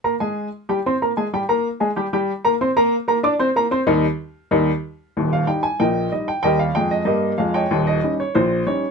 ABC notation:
X:1
M:2/4
L:1/16
Q:1/4=94
K:Eb
V:1 name="Upright piano"
[B,Bb] [A,Aa]3 [G,Gg] [Ccc'] [B,Bb] [A,Aa] | [G,Gg] [B,Bb]2 [A,Aa] [G,Gg] [G,Gg]2 [B,Bb] | [Ccc'] [B,Bb]2 [B,Bb] [Ddd'] [Ccc'] [B,Bb] [Ccc'] | [E,,G,EB]2 z2 [E,,G,EB]2 z2 |
z f g a [Beg]2 e g | [Beg] f g e [GBe]2 f [_deg]- | [_deg] e2 d c2 d2 |]
V:2 name="Upright piano" clef=bass
z8 | z8 | z8 | z8 |
[E,,,E,,]2 [G,E]2 [B,,,B,,]2 [G,E]2 | [E,,G,]2 [F,,A,]2 [G,,B,]2 [F,,A,]2 | [E,,,E,,]2 [G,_DE]2 [B,,,B,,]2 [G,DE]2 |]